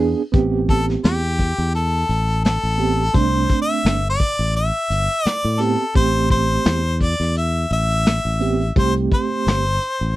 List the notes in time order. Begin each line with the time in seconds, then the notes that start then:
Already playing: E2 B3
0.00 D4 G#4
0.32 A1 B3 C4 G4, kick, closed hi-hat
0.69 A4, kick, closed hi-hat
0.88 snare, closed hi-hat
1.04 E2 G4, snare, closed hi-hat
1.39 kick, closed hi-hat
1.58 E2
1.74 A4, closed hi-hat
2.09 A1, closed hi-hat
2.28 closed hi-hat
2.44 A4, snare, closed hi-hat
2.63 A1
2.78 B3 C4 G4, closed hi-hat
2.98 closed hi-hat
3.13 C2 A3 C4 D4 C5, kick, closed hi-hat
3.33 closed hi-hat
3.50 kick, closed hi-hat
3.62 E5
3.85 G1, snare, closed hi-hat
4.04 closed hi-hat
4.10 D5
4.20 kick, closed hi-hat
4.39 A1, closed hi-hat
4.55 E5, closed hi-hat
4.90 G1, closed hi-hat
5.10 closed hi-hat
5.25 D5, muted fingered electric bass stroke, snare, closed hi-hat
5.45 A2
5.59 B3 C4 G4 A4, closed hi-hat
5.95 A1 A3 C4 G4 C5, kick, closed hi-hat
6.30 C5, kick, closed hi-hat
6.49 closed hi-hat
6.65 E2, snare, closed hi-hat
7.00 D5, kick, closed hi-hat
7.20 E2, snare
7.36 E5, closed hi-hat
7.71 A1 E5, closed hi-hat
7.90 closed hi-hat
8.06 snare, closed hi-hat
8.25 A1
8.40 B3 C4 G4, closed hi-hat
8.60 closed hi-hat
8.76 C2 A3 C4 G4 C5, kick, closed hi-hat
8.96 closed hi-hat
9.12 C5, kick, closed hi-hat
9.47 G1, snare, closed hi-hat
9.66 closed hi-hat
9.82 closed hi-hat
10.01 A1, closed hi-hat